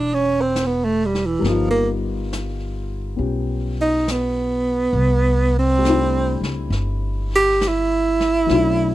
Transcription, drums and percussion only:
0.56 snare, hi-hat pedal
1.15 snare
1.44 brush sweep, snare
2.33 snare, hi-hat pedal
3.20 brush sweep
4.08 snare, hi-hat pedal
4.96 brush sweep
5.85 snare, hi-hat pedal
6.43 snare
6.72 brush sweep, snare
7.61 snare, hi-hat pedal
8.20 snare
8.49 brush sweep, snare

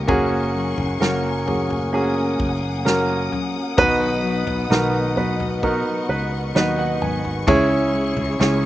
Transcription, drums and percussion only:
0.08 kick, floor tom
0.78 floor tom
1.02 snare
1.47 floor tom
1.70 floor tom
2.40 kick
2.86 snare
3.32 floor tom
3.78 kick, floor tom
4.47 floor tom
4.72 snare
5.17 floor tom
5.40 floor tom
5.63 kick
6.56 snare
7.02 floor tom
7.25 floor tom
7.48 kick, floor tom
8.17 floor tom
8.41 snare

